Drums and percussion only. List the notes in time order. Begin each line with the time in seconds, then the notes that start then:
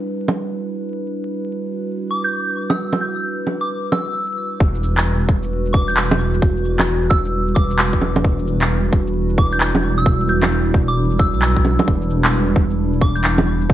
0.28 low bongo
2.70 low bongo
2.93 low bongo
3.47 low bongo
3.92 low bongo
4.60 kick
4.75 shaker
4.83 cabasa
4.97 clap, shaker
5.20 shaker
5.29 kick, cabasa
5.43 shaker
5.66 shaker
5.74 kick, cabasa
5.89 cabasa, shaker
5.97 clap
6.11 low bongo, shaker
6.20 cabasa
6.34 shaker
6.42 kick
6.57 shaker
6.65 cabasa
6.79 clap, low bongo, shaker
7.02 shaker
7.11 kick, cabasa
7.25 shaker
7.48 shaker
7.56 kick, cabasa
7.70 shaker
7.79 clap
7.93 kick, shaker
8.02 low bongo, cabasa
8.16 low bongo, shaker
8.24 kick
8.39 shaker
8.47 cabasa
8.61 clap, shaker
8.84 shaker
8.92 kick, cabasa
9.07 shaker
9.30 shaker
9.38 kick, cabasa
9.52 cabasa, shaker
9.61 clap
9.75 low bongo, shaker
9.83 cabasa
9.98 shaker
10.06 kick
10.20 shaker
10.28 cabasa
10.43 clap, low bongo, shaker
10.65 shaker
10.74 kick, cabasa
10.88 shaker
11.11 shaker
11.19 kick, cabasa
11.34 shaker
11.42 clap
11.56 kick, shaker
11.65 low bongo, cabasa
11.79 low bongo, shaker
11.88 kick
12.02 shaker
12.10 cabasa
12.24 clap, shaker
12.47 shaker
12.56 kick, cabasa
12.70 shaker
12.93 shaker
13.01 kick, cabasa
13.16 cabasa, shaker
13.24 clap
13.38 low bongo, shaker
13.47 cabasa
13.61 shaker
13.70 kick